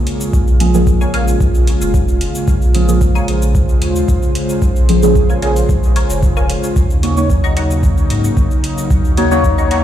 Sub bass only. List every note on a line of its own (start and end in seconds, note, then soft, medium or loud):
0.33 1.35 A#1 loud
1.41 1.75 A#1 medium
1.81 2.29 F1 medium
2.48 3.76 A#1 loud
3.82 4.01 D#2 medium
4.62 5.63 A#1 loud
5.69 6.04 A#1 medium
6.10 6.57 F1 medium
6.76 8.04 D#2 loud
8.10 8.30 G#2 medium
8.91 9.84 D#2 loud